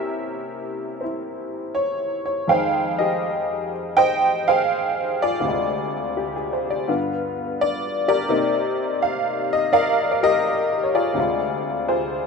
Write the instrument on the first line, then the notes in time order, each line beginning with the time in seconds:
honky-tonk piano
Already playing: C3 A#3 C#4 E4 G4 A#4 E5
1.01 C4 E4
1.75 C#5
2.26 C#5
2.48 F2 D#3 G#3 G#4 C5 F5 G5
2.99 G4 G#4 D#5
3.97 C5 D#5 G5
4.48 G#4 C5 F5
5.22 F4 G#4 D5
5.40 D2 C3
5.47 G#3 F4
6.17 G4
6.36 G#4
6.53 C5
6.70 D5
6.88 G2 D3 B3 F4
7.61 D5
8.08 G4 A#4 D5
8.29 C3 A#3 C4 D#4
9.02 F5
9.53 D#5
9.73 A#4 D5 F5
10.12 D5
10.23 G4 A#4 D#5
10.83 C#5
10.95 F4 G#4 D5
11.14 D2 C3 G#3
11.19 F4
11.88 F4 G#4 C5